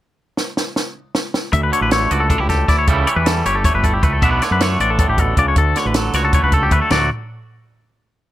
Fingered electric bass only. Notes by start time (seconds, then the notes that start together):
1.53 D2
1.81 A1
2.11 C#2
2.39 C#2
2.68 D2
2.88 C#2
3.16 E2
3.45 G1
3.74 G1
4.03 C#2
4.22 B1
4.51 F#2
4.80 A1
5.08 A1
5.37 C#2
5.56 D2
5.85 A1
6.14 C#2
6.43 C#2
6.71 D2
6.91 D2